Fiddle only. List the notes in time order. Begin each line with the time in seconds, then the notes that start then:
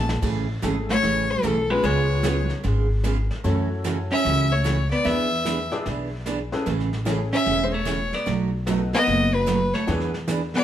0.90 C#5
1.30 A4
1.70 B4
1.85 C#5
4.12 E5
4.51 C#5
4.90 D5
5.05 E5
7.33 E5
7.63 C5
7.72 C#5
8.14 D5
8.94 D#5
9.34 B4
9.74 C#5
10.56 D5